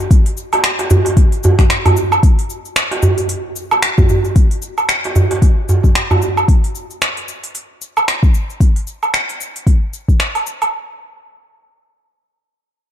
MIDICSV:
0, 0, Header, 1, 3, 480
1, 0, Start_track
1, 0, Tempo, 530973
1, 99, Time_signature, 4, 2, 24, 8
1, 11671, End_track
2, 0, Start_track
2, 0, Title_t, "Darbuka"
2, 484, Note_on_c, 9, 63, 63
2, 575, Note_off_c, 9, 63, 0
2, 716, Note_on_c, 9, 63, 67
2, 807, Note_off_c, 9, 63, 0
2, 820, Note_on_c, 9, 64, 97
2, 911, Note_off_c, 9, 64, 0
2, 949, Note_on_c, 9, 63, 66
2, 1039, Note_off_c, 9, 63, 0
2, 1303, Note_on_c, 9, 62, 58
2, 1309, Note_on_c, 9, 64, 93
2, 1394, Note_off_c, 9, 62, 0
2, 1400, Note_off_c, 9, 64, 0
2, 1435, Note_on_c, 9, 63, 36
2, 1437, Note_on_c, 9, 62, 50
2, 1525, Note_off_c, 9, 63, 0
2, 1528, Note_off_c, 9, 62, 0
2, 1679, Note_on_c, 9, 64, 90
2, 1769, Note_off_c, 9, 64, 0
2, 1779, Note_on_c, 9, 62, 51
2, 1869, Note_off_c, 9, 62, 0
2, 2634, Note_on_c, 9, 63, 67
2, 2725, Note_off_c, 9, 63, 0
2, 2737, Note_on_c, 9, 64, 90
2, 2828, Note_off_c, 9, 64, 0
2, 3364, Note_on_c, 9, 62, 52
2, 3455, Note_off_c, 9, 62, 0
2, 3600, Note_on_c, 9, 64, 99
2, 3690, Note_off_c, 9, 64, 0
2, 3704, Note_on_c, 9, 64, 76
2, 3794, Note_off_c, 9, 64, 0
2, 3840, Note_on_c, 9, 62, 52
2, 3930, Note_off_c, 9, 62, 0
2, 4568, Note_on_c, 9, 63, 64
2, 4659, Note_off_c, 9, 63, 0
2, 4662, Note_on_c, 9, 64, 86
2, 4753, Note_off_c, 9, 64, 0
2, 4801, Note_on_c, 9, 63, 69
2, 4891, Note_off_c, 9, 63, 0
2, 5145, Note_on_c, 9, 64, 78
2, 5149, Note_on_c, 9, 62, 46
2, 5235, Note_off_c, 9, 64, 0
2, 5239, Note_off_c, 9, 62, 0
2, 5273, Note_on_c, 9, 62, 46
2, 5364, Note_off_c, 9, 62, 0
2, 5522, Note_on_c, 9, 64, 98
2, 5613, Note_off_c, 9, 64, 0
2, 5634, Note_on_c, 9, 62, 46
2, 5724, Note_off_c, 9, 62, 0
2, 11671, End_track
3, 0, Start_track
3, 0, Title_t, "Drums"
3, 97, Note_on_c, 9, 36, 113
3, 99, Note_on_c, 9, 46, 73
3, 100, Note_on_c, 9, 82, 46
3, 187, Note_off_c, 9, 36, 0
3, 189, Note_off_c, 9, 46, 0
3, 190, Note_off_c, 9, 82, 0
3, 235, Note_on_c, 9, 46, 49
3, 326, Note_off_c, 9, 46, 0
3, 337, Note_on_c, 9, 82, 72
3, 428, Note_off_c, 9, 82, 0
3, 476, Note_on_c, 9, 46, 33
3, 476, Note_on_c, 9, 77, 63
3, 477, Note_on_c, 9, 82, 31
3, 567, Note_off_c, 9, 46, 0
3, 567, Note_off_c, 9, 77, 0
3, 568, Note_off_c, 9, 82, 0
3, 576, Note_on_c, 9, 26, 101
3, 576, Note_on_c, 9, 46, 69
3, 577, Note_on_c, 9, 82, 41
3, 666, Note_off_c, 9, 26, 0
3, 666, Note_off_c, 9, 46, 0
3, 667, Note_off_c, 9, 82, 0
3, 714, Note_on_c, 9, 46, 34
3, 715, Note_on_c, 9, 82, 32
3, 805, Note_off_c, 9, 46, 0
3, 805, Note_off_c, 9, 82, 0
3, 816, Note_on_c, 9, 82, 74
3, 907, Note_off_c, 9, 82, 0
3, 957, Note_on_c, 9, 46, 47
3, 958, Note_on_c, 9, 82, 30
3, 1047, Note_off_c, 9, 46, 0
3, 1048, Note_off_c, 9, 82, 0
3, 1056, Note_on_c, 9, 36, 100
3, 1057, Note_on_c, 9, 46, 69
3, 1058, Note_on_c, 9, 82, 39
3, 1146, Note_off_c, 9, 36, 0
3, 1147, Note_off_c, 9, 46, 0
3, 1148, Note_off_c, 9, 82, 0
3, 1196, Note_on_c, 9, 46, 33
3, 1197, Note_on_c, 9, 82, 33
3, 1286, Note_off_c, 9, 46, 0
3, 1287, Note_off_c, 9, 82, 0
3, 1297, Note_on_c, 9, 82, 75
3, 1388, Note_off_c, 9, 82, 0
3, 1435, Note_on_c, 9, 26, 33
3, 1435, Note_on_c, 9, 46, 33
3, 1436, Note_on_c, 9, 36, 63
3, 1436, Note_on_c, 9, 82, 34
3, 1525, Note_off_c, 9, 26, 0
3, 1525, Note_off_c, 9, 46, 0
3, 1526, Note_off_c, 9, 36, 0
3, 1526, Note_off_c, 9, 82, 0
3, 1537, Note_on_c, 9, 26, 94
3, 1537, Note_on_c, 9, 46, 74
3, 1538, Note_on_c, 9, 82, 39
3, 1627, Note_off_c, 9, 26, 0
3, 1627, Note_off_c, 9, 46, 0
3, 1628, Note_off_c, 9, 82, 0
3, 1678, Note_on_c, 9, 46, 32
3, 1678, Note_on_c, 9, 77, 58
3, 1679, Note_on_c, 9, 82, 30
3, 1768, Note_off_c, 9, 46, 0
3, 1768, Note_off_c, 9, 77, 0
3, 1769, Note_off_c, 9, 82, 0
3, 1779, Note_on_c, 9, 82, 74
3, 1869, Note_off_c, 9, 82, 0
3, 1917, Note_on_c, 9, 77, 83
3, 1918, Note_on_c, 9, 82, 32
3, 2008, Note_off_c, 9, 77, 0
3, 2008, Note_off_c, 9, 82, 0
3, 2017, Note_on_c, 9, 36, 114
3, 2018, Note_on_c, 9, 46, 72
3, 2019, Note_on_c, 9, 82, 42
3, 2107, Note_off_c, 9, 36, 0
3, 2109, Note_off_c, 9, 46, 0
3, 2110, Note_off_c, 9, 82, 0
3, 2158, Note_on_c, 9, 46, 45
3, 2249, Note_off_c, 9, 46, 0
3, 2259, Note_on_c, 9, 82, 75
3, 2349, Note_off_c, 9, 82, 0
3, 2398, Note_on_c, 9, 82, 30
3, 2489, Note_off_c, 9, 82, 0
3, 2496, Note_on_c, 9, 26, 95
3, 2496, Note_on_c, 9, 46, 64
3, 2497, Note_on_c, 9, 82, 39
3, 2586, Note_off_c, 9, 26, 0
3, 2586, Note_off_c, 9, 46, 0
3, 2587, Note_off_c, 9, 82, 0
3, 2636, Note_on_c, 9, 46, 32
3, 2726, Note_off_c, 9, 46, 0
3, 2735, Note_on_c, 9, 82, 72
3, 2825, Note_off_c, 9, 82, 0
3, 2872, Note_on_c, 9, 46, 42
3, 2873, Note_on_c, 9, 82, 30
3, 2963, Note_off_c, 9, 46, 0
3, 2964, Note_off_c, 9, 82, 0
3, 2975, Note_on_c, 9, 46, 68
3, 2976, Note_on_c, 9, 82, 43
3, 3065, Note_off_c, 9, 46, 0
3, 3066, Note_off_c, 9, 82, 0
3, 3218, Note_on_c, 9, 82, 77
3, 3309, Note_off_c, 9, 82, 0
3, 3358, Note_on_c, 9, 77, 75
3, 3358, Note_on_c, 9, 82, 32
3, 3448, Note_off_c, 9, 77, 0
3, 3449, Note_off_c, 9, 82, 0
3, 3458, Note_on_c, 9, 26, 98
3, 3458, Note_on_c, 9, 46, 67
3, 3459, Note_on_c, 9, 82, 42
3, 3548, Note_off_c, 9, 26, 0
3, 3548, Note_off_c, 9, 46, 0
3, 3549, Note_off_c, 9, 82, 0
3, 3598, Note_on_c, 9, 36, 99
3, 3598, Note_on_c, 9, 82, 30
3, 3688, Note_off_c, 9, 36, 0
3, 3689, Note_off_c, 9, 82, 0
3, 3699, Note_on_c, 9, 82, 68
3, 3789, Note_off_c, 9, 82, 0
3, 3838, Note_on_c, 9, 82, 29
3, 3929, Note_off_c, 9, 82, 0
3, 3940, Note_on_c, 9, 36, 114
3, 3940, Note_on_c, 9, 46, 63
3, 3941, Note_on_c, 9, 82, 47
3, 4030, Note_off_c, 9, 36, 0
3, 4030, Note_off_c, 9, 46, 0
3, 4031, Note_off_c, 9, 82, 0
3, 4078, Note_on_c, 9, 46, 43
3, 4168, Note_off_c, 9, 46, 0
3, 4177, Note_on_c, 9, 82, 75
3, 4268, Note_off_c, 9, 82, 0
3, 4319, Note_on_c, 9, 77, 55
3, 4319, Note_on_c, 9, 82, 33
3, 4409, Note_off_c, 9, 77, 0
3, 4410, Note_off_c, 9, 82, 0
3, 4418, Note_on_c, 9, 26, 94
3, 4418, Note_on_c, 9, 46, 64
3, 4419, Note_on_c, 9, 82, 41
3, 4509, Note_off_c, 9, 26, 0
3, 4509, Note_off_c, 9, 46, 0
3, 4510, Note_off_c, 9, 82, 0
3, 4559, Note_on_c, 9, 46, 30
3, 4649, Note_off_c, 9, 46, 0
3, 4662, Note_on_c, 9, 82, 75
3, 4752, Note_off_c, 9, 82, 0
3, 4799, Note_on_c, 9, 46, 38
3, 4800, Note_on_c, 9, 82, 30
3, 4889, Note_off_c, 9, 46, 0
3, 4890, Note_off_c, 9, 82, 0
3, 4900, Note_on_c, 9, 36, 97
3, 4902, Note_on_c, 9, 46, 62
3, 4902, Note_on_c, 9, 82, 39
3, 4991, Note_off_c, 9, 36, 0
3, 4992, Note_off_c, 9, 46, 0
3, 4993, Note_off_c, 9, 82, 0
3, 5142, Note_on_c, 9, 82, 69
3, 5232, Note_off_c, 9, 82, 0
3, 5279, Note_on_c, 9, 36, 61
3, 5282, Note_on_c, 9, 82, 33
3, 5370, Note_off_c, 9, 36, 0
3, 5373, Note_off_c, 9, 82, 0
3, 5382, Note_on_c, 9, 26, 92
3, 5382, Note_on_c, 9, 46, 62
3, 5383, Note_on_c, 9, 82, 42
3, 5473, Note_off_c, 9, 26, 0
3, 5473, Note_off_c, 9, 46, 0
3, 5474, Note_off_c, 9, 82, 0
3, 5523, Note_on_c, 9, 77, 52
3, 5524, Note_on_c, 9, 82, 28
3, 5613, Note_off_c, 9, 77, 0
3, 5614, Note_off_c, 9, 82, 0
3, 5623, Note_on_c, 9, 82, 68
3, 5714, Note_off_c, 9, 82, 0
3, 5762, Note_on_c, 9, 77, 72
3, 5763, Note_on_c, 9, 82, 31
3, 5853, Note_off_c, 9, 77, 0
3, 5853, Note_off_c, 9, 82, 0
3, 5861, Note_on_c, 9, 36, 117
3, 5863, Note_on_c, 9, 46, 61
3, 5864, Note_on_c, 9, 82, 42
3, 5951, Note_off_c, 9, 36, 0
3, 5953, Note_off_c, 9, 46, 0
3, 5954, Note_off_c, 9, 82, 0
3, 6003, Note_on_c, 9, 46, 41
3, 6093, Note_off_c, 9, 46, 0
3, 6104, Note_on_c, 9, 82, 74
3, 6194, Note_off_c, 9, 82, 0
3, 6242, Note_on_c, 9, 82, 32
3, 6333, Note_off_c, 9, 82, 0
3, 6344, Note_on_c, 9, 26, 83
3, 6344, Note_on_c, 9, 46, 59
3, 6345, Note_on_c, 9, 82, 40
3, 6434, Note_off_c, 9, 26, 0
3, 6434, Note_off_c, 9, 46, 0
3, 6435, Note_off_c, 9, 82, 0
3, 6482, Note_on_c, 9, 46, 28
3, 6572, Note_off_c, 9, 46, 0
3, 6584, Note_on_c, 9, 82, 71
3, 6674, Note_off_c, 9, 82, 0
3, 6722, Note_on_c, 9, 46, 37
3, 6723, Note_on_c, 9, 82, 32
3, 6812, Note_off_c, 9, 46, 0
3, 6813, Note_off_c, 9, 82, 0
3, 6824, Note_on_c, 9, 46, 56
3, 6824, Note_on_c, 9, 82, 42
3, 6914, Note_off_c, 9, 46, 0
3, 6915, Note_off_c, 9, 82, 0
3, 7066, Note_on_c, 9, 82, 77
3, 7156, Note_off_c, 9, 82, 0
3, 7204, Note_on_c, 9, 77, 70
3, 7205, Note_on_c, 9, 82, 32
3, 7295, Note_off_c, 9, 77, 0
3, 7296, Note_off_c, 9, 82, 0
3, 7305, Note_on_c, 9, 26, 84
3, 7305, Note_on_c, 9, 46, 55
3, 7306, Note_on_c, 9, 82, 43
3, 7395, Note_off_c, 9, 26, 0
3, 7395, Note_off_c, 9, 46, 0
3, 7396, Note_off_c, 9, 82, 0
3, 7438, Note_on_c, 9, 36, 102
3, 7443, Note_on_c, 9, 82, 29
3, 7528, Note_off_c, 9, 36, 0
3, 7534, Note_off_c, 9, 82, 0
3, 7542, Note_on_c, 9, 82, 75
3, 7633, Note_off_c, 9, 82, 0
3, 7684, Note_on_c, 9, 82, 31
3, 7774, Note_off_c, 9, 82, 0
3, 7778, Note_on_c, 9, 36, 105
3, 7781, Note_on_c, 9, 46, 57
3, 7782, Note_on_c, 9, 82, 43
3, 7869, Note_off_c, 9, 36, 0
3, 7872, Note_off_c, 9, 46, 0
3, 7872, Note_off_c, 9, 82, 0
3, 7920, Note_on_c, 9, 46, 38
3, 8010, Note_off_c, 9, 46, 0
3, 8020, Note_on_c, 9, 82, 68
3, 8110, Note_off_c, 9, 82, 0
3, 8161, Note_on_c, 9, 77, 52
3, 8161, Note_on_c, 9, 82, 29
3, 8251, Note_off_c, 9, 77, 0
3, 8252, Note_off_c, 9, 82, 0
3, 8260, Note_on_c, 9, 26, 86
3, 8260, Note_on_c, 9, 46, 56
3, 8261, Note_on_c, 9, 82, 40
3, 8351, Note_off_c, 9, 26, 0
3, 8351, Note_off_c, 9, 46, 0
3, 8352, Note_off_c, 9, 82, 0
3, 8400, Note_on_c, 9, 46, 28
3, 8401, Note_on_c, 9, 82, 29
3, 8491, Note_off_c, 9, 46, 0
3, 8492, Note_off_c, 9, 82, 0
3, 8503, Note_on_c, 9, 82, 71
3, 8593, Note_off_c, 9, 82, 0
3, 8641, Note_on_c, 9, 46, 35
3, 8642, Note_on_c, 9, 82, 29
3, 8732, Note_off_c, 9, 46, 0
3, 8733, Note_off_c, 9, 82, 0
3, 8738, Note_on_c, 9, 36, 93
3, 8742, Note_on_c, 9, 46, 53
3, 8743, Note_on_c, 9, 82, 37
3, 8829, Note_off_c, 9, 36, 0
3, 8833, Note_off_c, 9, 46, 0
3, 8833, Note_off_c, 9, 82, 0
3, 8981, Note_on_c, 9, 82, 69
3, 9071, Note_off_c, 9, 82, 0
3, 9117, Note_on_c, 9, 36, 57
3, 9122, Note_on_c, 9, 82, 31
3, 9207, Note_off_c, 9, 36, 0
3, 9212, Note_off_c, 9, 82, 0
3, 9219, Note_on_c, 9, 26, 81
3, 9219, Note_on_c, 9, 46, 53
3, 9220, Note_on_c, 9, 82, 38
3, 9309, Note_off_c, 9, 26, 0
3, 9309, Note_off_c, 9, 46, 0
3, 9310, Note_off_c, 9, 82, 0
3, 9358, Note_on_c, 9, 46, 26
3, 9358, Note_on_c, 9, 77, 47
3, 9359, Note_on_c, 9, 82, 27
3, 9448, Note_off_c, 9, 46, 0
3, 9448, Note_off_c, 9, 77, 0
3, 9449, Note_off_c, 9, 82, 0
3, 9461, Note_on_c, 9, 82, 71
3, 9552, Note_off_c, 9, 82, 0
3, 9599, Note_on_c, 9, 46, 26
3, 9599, Note_on_c, 9, 77, 60
3, 9600, Note_on_c, 9, 82, 30
3, 9689, Note_off_c, 9, 46, 0
3, 9689, Note_off_c, 9, 77, 0
3, 9690, Note_off_c, 9, 82, 0
3, 11671, End_track
0, 0, End_of_file